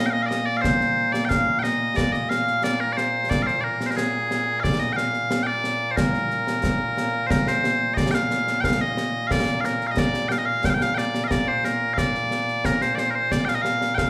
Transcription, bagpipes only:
Already playing: A#2 A#3
0.06 G5
0.10 D#5 F5
0.23 D5 F5
0.29 D#5
0.46 D5
0.57 F5
0.61 C5
1.12 D5
1.25 F5 G5
1.59 D#5 G5
1.97 D5
2.13 D#5
2.30 F5
2.64 D5
2.80 A#4
2.93 D5
2.97 C5
3.30 D5
3.43 F5
3.47 C5
3.61 A#4 D5
3.87 C5
3.91 A#4
3.96 G#4
4.60 D5 F5
4.80 D#5
4.93 F5 G5
5.43 D5 G5
5.91 C5
5.97 A#4
7.27 A#4 C5
7.48 C5
7.94 D5 D#5
8.11 F5 G5
8.60 F5 G5
8.81 D#5
9.27 F5
9.32 D5
9.61 F5
9.65 A#4
9.87 F5
9.91 D#5
9.99 D5
10.29 F5 G5
10.38 D#5
10.46 F5
10.65 G5
10.70 F5
10.74 G5
10.82 F5
10.94 D5 G5
11.24 D#5 F5
11.32 D5
11.48 C5
11.65 A#4
11.94 F5
11.98 D5
12.65 A#4
12.82 C5
12.95 C5 D5
13.11 A#4
13.15 C5
13.32 D5
13.45 F5 G5
13.55 D#5
13.62 F5
13.94 F5 G5

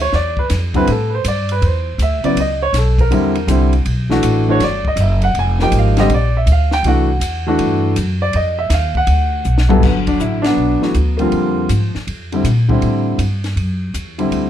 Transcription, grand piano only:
0.01 C#5
0.15 D5
0.39 B4
0.75 D3 G3 C4 E4 B4
0.91 A4
1.10 B4
1.15 C5
1.28 D5
1.52 B4
1.66 C5
2.02 E5
2.24 C#3 F#3 B3 E4 D5
2.40 D#5
2.62 C#5
2.78 A4
3.01 A#4
3.11 D3 G3 C4 E4
3.48 D3 G3 C4 E4
4.09 E3 A3 D4 F#4
4.48 E3 A3 D4 F#4 C#5
4.64 D5
4.88 D#5
5.01 E5
5.24 F#5
5.39 G#5
5.61 F3 A#3 D#4 G4 G5
5.78 F5
5.97 D3 G3 C4 G4 D#5
6.14 D5
6.37 E5
6.52 F5
6.73 G5
6.85 E3 A3 D4 F#4 F#5
7.47 E3 A3 D4 F#4
8.22 D5
8.36 D#5
8.59 E5
8.73 F5
8.97 F#5
9.69 G2 F#3 B3 E4 A4
9.83 D3 F#3 B3
10.08 D4
10.20 E4
10.42 B3 D4
10.46 F#3
10.81 E3 A3 D4 F#4
11.17 D3 G3 A#3 C4
11.21 F3 F4
12.32 D3 G3 C4 E4
12.69 D3 G3 C4 E4
14.18 D3 G3 C4 E4

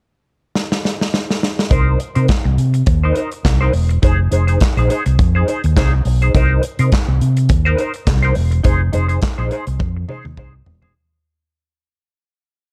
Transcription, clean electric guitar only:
1.70 D#4 A#4 C5
1.99 muted clean electric guitar stroke
2.15 D#4 A#4 C5
2.28 muted clean electric guitar stroke
2.44 muted clean electric guitar stroke
2.74 muted clean electric guitar stroke
2.87 muted clean electric guitar stroke
3.03 D#4 A#4 C5
3.16 D#4 A#4 C5
3.32 muted clean electric guitar stroke
3.44 muted clean electric guitar stroke
3.61 D#4 A#4 C5
3.74 muted clean electric guitar stroke
3.89 muted clean electric guitar stroke
4.02 D#4 G#4 C5
4.31 D#4 G#4 C5
4.47 D#4 G#4 C5
4.61 muted clean electric guitar stroke
4.77 D#4 G#4 C5
4.90 D#4 G#4 C5
5.06 muted clean electric guitar stroke
5.19 muted clean electric guitar stroke
5.35 D#4 G#4 C5
5.48 D#4 G#4 C5
5.65 muted clean electric guitar stroke
5.76 D#4 G#4 C5
5.94 muted clean electric guitar stroke
6.06 muted clean electric guitar stroke
6.22 D#4 G#4 C5
6.35 D#4 A#4 C5
6.64 muted clean electric guitar stroke
6.79 D#4 A#4 C5
6.92 muted clean electric guitar stroke
7.09 muted clean electric guitar stroke
7.37 muted clean electric guitar stroke
7.50 muted clean electric guitar stroke
7.65 D#4 A#4 C5
7.79 D#4 A#4 C5
7.94 muted clean electric guitar stroke
8.07 muted clean electric guitar stroke
8.23 D#4 A#4 C5
8.35 muted clean electric guitar stroke
8.51 muted clean electric guitar stroke
8.64 D#4 G#4 C5
8.93 D#4 G#4 C5
9.08 D#4 G#4 C5
9.21 muted clean electric guitar stroke
9.38 D#4 G#4 C5
9.51 D#4 G#4 C5
9.67 muted clean electric guitar stroke
9.80 muted clean electric guitar stroke
9.96 muted clean electric guitar stroke
10.08 D#4 G#4 C5
10.25 muted clean electric guitar stroke
10.38 D#4 G#4 C5
10.54 muted clean electric guitar stroke
10.66 muted clean electric guitar stroke
10.82 D#4 G#4 C5

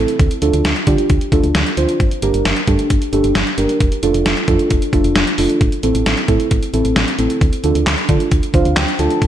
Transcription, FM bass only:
0.20 D2
0.42 D2
0.53 D2
0.65 D2
0.87 D3
1.10 D2
1.32 D2
1.44 D2
1.55 D2
1.77 D2
2.00 G1
2.23 G1
2.34 G1
2.45 G1
2.68 G2
2.90 G1
3.13 G1
3.24 G1
3.35 G1
3.58 G1
3.81 F1
4.03 F1
4.14 F1
4.26 F1
4.48 F2
4.71 F1
4.93 F1
5.04 F1
5.16 F1
5.38 F1
5.61 A1
5.83 A1
5.95 A1
6.06 A1
6.28 A2
6.51 A1
6.74 A1
6.85 A1
6.96 A1
7.19 A1
7.41 D2
7.64 D2
7.75 D2
7.86 D2
8.09 D3
8.32 D2
8.54 D2
8.65 D2
8.77 D2
8.99 D2
9.22 G1

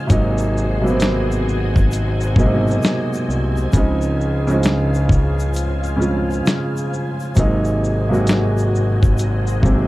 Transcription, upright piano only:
Already playing: C#3 F3 G#3 C4 D4 D#4
0.07 C3 F#3 G#3 A#3
0.11 D#4
0.82 C3 F#3 G#3 A#3
0.86 B3
0.92 C4
2.36 B2 F#3 G#3 A#3 D#4
2.42 C3
3.73 C#3 F3 G#3 C4
3.77 D#4
4.47 C#3 F3 G#3 C4
4.51 D#4
5.96 C#3 F3 G#3 C4
6.01 F4
7.35 C3 F#3 G#3 A#3 D#4
8.09 C3 F#3 G#3 A#3
8.13 F#4
9.62 C3 F#3 G#3 A#3
9.66 C4

